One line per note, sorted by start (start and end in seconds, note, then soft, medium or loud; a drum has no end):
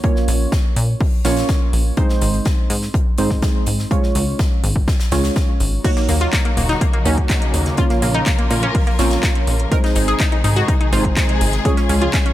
0.04 1.22 A#3 medium
0.04 1.22 C#4 medium
0.04 1.22 F4 medium
0.04 1.22 C#5 medium
0.04 kick loud
0.04 closed hi-hat medium
0.16 snare soft
0.28 0.47 A#1 loud
0.28 closed hi-hat medium
0.28 open hi-hat loud
0.52 kick loud
0.52 snare loud
0.52 closed hi-hat medium
0.76 0.95 A#2 medium
0.76 closed hi-hat medium
0.76 open hi-hat medium
1.00 kick loud
1.00 open hi-hat medium
1.25 1.44 A#1 loud
1.25 1.94 A#3 medium
1.25 1.94 C#4 medium
1.25 1.94 F4 medium
1.25 1.94 C#5 medium
1.25 snare loud
1.25 closed hi-hat medium
1.25 open hi-hat loud
1.37 snare loud
1.37 closed hi-hat medium
1.49 kick loud
1.49 snare loud
1.49 closed hi-hat medium
1.73 1.92 A#1 medium
1.73 open hi-hat medium
1.97 3.15 G#3 medium
1.97 3.15 C4 medium
1.97 3.15 D#4 medium
1.97 3.15 C5 medium
1.97 kick loud
1.97 closed hi-hat medium
2.09 snare medium
2.21 2.40 G#1 medium
2.21 closed hi-hat medium
2.21 open hi-hat medium
2.34 closed hi-hat soft
2.45 kick loud
2.45 snare loud
2.45 closed hi-hat medium
2.70 2.89 G#2 medium
2.70 closed hi-hat medium
2.70 open hi-hat medium
2.82 snare soft
2.94 kick loud
2.94 closed hi-hat medium
3.18 3.37 G#1 medium
3.18 3.88 G#3 medium
3.18 3.88 C4 medium
3.18 3.88 D#4 medium
3.18 3.88 C5 medium
3.18 closed hi-hat medium
3.18 open hi-hat loud
3.30 kick medium
3.30 snare soft
3.42 kick loud
3.42 snare loud
3.42 closed hi-hat medium
3.66 3.86 G#1 medium
3.66 closed hi-hat medium
3.66 open hi-hat medium
3.79 snare soft
3.91 5.09 G#3 medium
3.91 5.09 C#4 medium
3.91 5.09 F4 medium
3.91 5.09 C#5 medium
3.91 kick loud
3.91 closed hi-hat medium
4.03 snare soft
4.15 4.34 C#2 loud
4.15 closed hi-hat medium
4.15 open hi-hat loud
4.39 kick loud
4.39 snare loud
4.39 closed hi-hat medium
4.64 4.82 G#1 medium
4.64 closed hi-hat medium
4.64 open hi-hat medium
4.76 kick medium
4.88 kick loud
4.88 snare loud
4.88 closed hi-hat medium
5.00 snare medium
5.00 closed hi-hat medium
5.12 5.31 C#2 loud
5.12 5.82 G#3 medium
5.12 5.82 C#4 medium
5.12 5.82 F4 medium
5.12 5.82 C#5 medium
5.12 snare loud
5.12 closed hi-hat medium
5.12 open hi-hat medium
5.24 snare medium
5.24 closed hi-hat medium
5.36 kick loud
5.36 snare loud
5.36 closed hi-hat medium
5.60 5.79 G#1 loud
5.60 closed hi-hat medium
5.60 open hi-hat medium
5.84 9.68 C#3 medium
5.84 7.76 F#3 medium
5.84 9.68 A#3 medium
5.84 7.03 A#3 medium
5.84 7.76 D#4 medium
5.84 7.03 D#4 medium
5.84 7.76 F#4 medium
5.84 7.03 F#4 medium
5.84 5.91 F#4 medium
5.84 7.03 C#5 medium
5.84 kick loud
5.84 closed hi-hat medium
5.84 crash medium
5.96 6.03 A#3 medium
5.96 snare medium
5.96 closed hi-hat soft
6.08 6.27 D#2 loud
6.08 6.15 A#3 medium
6.08 closed hi-hat medium
6.08 open hi-hat loud
6.21 6.27 F4 medium
6.21 closed hi-hat soft
6.33 6.39 A#3 medium
6.33 kick loud
6.33 snare loud
6.33 clap loud
6.33 closed hi-hat medium
6.45 6.51 A#3 medium
6.45 closed hi-hat soft
6.57 6.76 D#1 medium
6.57 6.63 A#3 medium
6.57 closed hi-hat medium
6.57 open hi-hat medium
6.69 6.75 D#4 medium
6.69 snare soft
6.69 closed hi-hat soft
6.81 6.88 A#3 medium
6.81 kick loud
6.81 closed hi-hat medium
6.93 7.00 A#3 medium
6.93 closed hi-hat soft
7.05 7.24 D#2 loud
7.05 7.75 A#3 medium
7.05 7.68 C#4 medium
7.05 7.75 D#4 medium
7.05 7.75 F#4 medium
7.05 7.75 C#5 medium
7.05 closed hi-hat medium
7.05 open hi-hat medium
7.18 kick medium
7.18 closed hi-hat soft
7.30 kick loud
7.30 snare loud
7.30 clap loud
7.30 closed hi-hat medium
7.42 closed hi-hat soft
7.54 7.73 D#2 medium
7.54 closed hi-hat medium
7.54 open hi-hat medium
7.66 snare soft
7.66 closed hi-hat soft
7.77 9.70 F3 medium
7.77 8.96 A#3 medium
7.77 8.96 C#4 medium
7.77 8.96 F4 medium
7.77 9.70 F4 medium
7.77 7.84 F4 loud
7.77 9.70 A#4 medium
7.77 8.96 C#5 medium
7.77 kick loud
7.77 closed hi-hat medium
7.90 7.96 A#3 medium
7.90 snare soft
7.90 closed hi-hat soft
8.02 8.21 A#1 loud
8.02 8.09 A#3 medium
8.02 closed hi-hat medium
8.02 open hi-hat loud
8.14 8.21 D#4 medium
8.14 closed hi-hat soft
8.26 8.33 A#3 medium
8.26 kick loud
8.26 snare loud
8.26 clap loud
8.26 closed hi-hat medium
8.39 8.45 A#3 medium
8.39 closed hi-hat soft
8.50 8.69 A#2 medium
8.50 8.57 A#3 medium
8.50 closed hi-hat medium
8.50 open hi-hat medium
8.63 8.69 C#4 medium
8.63 closed hi-hat soft
8.74 8.81 A#3 medium
8.74 kick loud
8.74 closed hi-hat medium
8.74 open hi-hat medium
8.87 8.93 A#3 medium
8.87 closed hi-hat soft
8.99 9.18 A#1 loud
8.99 9.69 A#3 medium
8.99 9.62 C4 medium
8.99 9.69 C#4 medium
8.99 9.69 F4 medium
8.99 9.69 C#5 medium
8.99 snare medium
8.99 closed hi-hat medium
8.99 open hi-hat loud
9.11 snare medium
9.11 closed hi-hat medium
9.11 closed hi-hat soft
9.23 kick loud
9.23 snare loud
9.23 clap loud
9.23 closed hi-hat medium
9.35 closed hi-hat soft
9.47 9.66 A#1 medium
9.47 open hi-hat medium
9.60 closed hi-hat soft
9.72 11.63 C3 medium
9.72 11.63 D#3 medium
9.72 12.33 G#3 medium
9.72 10.90 G#3 medium
9.72 10.90 C4 medium
9.72 11.63 D#4 medium
9.72 10.90 D#4 medium
9.72 12.33 G#4 medium
9.72 9.78 A#4 loud
9.72 10.90 C5 medium
9.72 kick loud
9.72 closed hi-hat medium
9.84 9.90 D#4 medium
9.84 snare medium
9.84 closed hi-hat soft
9.95 10.15 G#1 loud
9.95 10.02 D#4 medium
9.95 closed hi-hat medium
9.95 open hi-hat loud
10.08 10.14 G#4 medium
10.08 closed hi-hat soft
10.20 10.26 D#4 medium
10.20 kick loud
10.20 snare loud
10.20 clap loud
10.20 closed hi-hat medium
10.32 10.38 D#4 medium
10.32 closed hi-hat soft
10.44 10.63 G#2 loud
10.44 10.50 D#4 medium
10.44 closed hi-hat medium
10.44 open hi-hat medium
10.56 10.63 F#4 medium
10.56 snare soft
10.56 closed hi-hat soft
10.68 10.75 D#4 medium
10.68 kick loud
10.68 closed hi-hat medium
10.81 10.87 D#4 medium
10.81 closed hi-hat soft
10.93 11.11 G#1 loud
10.93 11.62 G#3 medium
10.93 11.62 C4 medium
10.93 11.62 D#4 medium
10.93 11.56 F4 medium
10.93 11.62 C5 medium
10.93 closed hi-hat medium
10.93 open hi-hat loud
11.05 kick medium
11.05 closed hi-hat soft
11.16 kick loud
11.16 snare loud
11.16 clap loud
11.16 closed hi-hat medium
11.29 closed hi-hat soft
11.41 11.60 G#1 medium
11.41 closed hi-hat medium
11.41 open hi-hat medium
11.52 snare soft
11.52 closed hi-hat soft
11.65 12.33 C#3 medium
11.65 12.33 F3 medium
11.65 12.33 G#3 medium
11.65 12.33 C#4 medium
11.65 12.33 F4 medium
11.65 11.71 G#4 loud
11.65 12.33 C#5 loud
11.65 kick loud
11.65 closed hi-hat medium
11.77 11.84 C#4 medium
11.77 snare soft
11.77 closed hi-hat soft
11.89 12.08 C#2 loud
11.89 11.96 C#4 medium
11.89 closed hi-hat medium
11.89 open hi-hat loud
12.02 12.08 F4 medium
12.02 closed hi-hat soft
12.13 12.20 C#4 medium
12.13 kick loud
12.13 snare loud
12.13 clap loud
12.13 closed hi-hat medium
12.26 12.32 C#4 medium
12.26 closed hi-hat soft